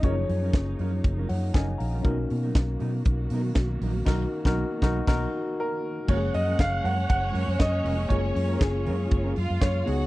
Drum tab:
CC |----------------|----------------|x-------x-------|x---------------|
HH |x-o-x-o-x-o-x-o-|x-o-x-o-x-o-x-o-|----------------|--o-x-o-x-o-x-o-|
SD |----o-------o---|----o-------o---|o--o--o-o-------|----o-------o---|
BD |o---o---o---o---|o---o---o---o---|o--o--o-o-------|o---o---o---o---|

CC |----------------|
HH |x-o-x-o-x-o-x-o-|
SD |----o-------o---|
BD |o---o---o---o---|